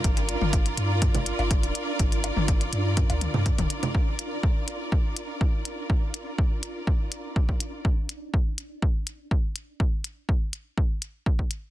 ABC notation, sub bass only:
X:1
M:4/4
L:1/16
Q:1/4=123
K:Gm
V:1 name="Sub bass" clef=bass
G,,,3 G,,,3 G,,3 G,,, z G,,,2 D,,, z2 | G,,,3 G,,,3 G,,3 D,, z G,, z D,,, z2 | z16 | z16 |
z16 | z16 |]